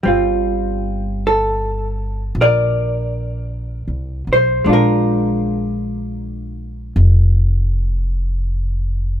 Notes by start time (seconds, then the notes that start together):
0.03 G1 G3 C4 F4
1.27 A4
2.35 A#1
2.41 A#4 D5
3.88 C2
4.27 B1
4.33 C5
4.64 A#1 G#3 D4
4.69 D4 F4 A#4
6.96 F1